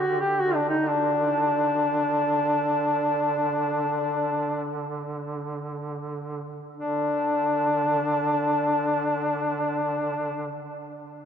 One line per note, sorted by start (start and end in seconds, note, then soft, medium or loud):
0.00 6.61 D3 soft
0.00 0.20 F#4 medium
0.20 0.41 G4 medium
0.40 0.56 F#4 medium
0.55 0.69 D4 medium
0.69 0.89 D#4 medium
0.88 4.78 D4 medium
6.77 10.63 D3 soft
6.77 10.62 D4 medium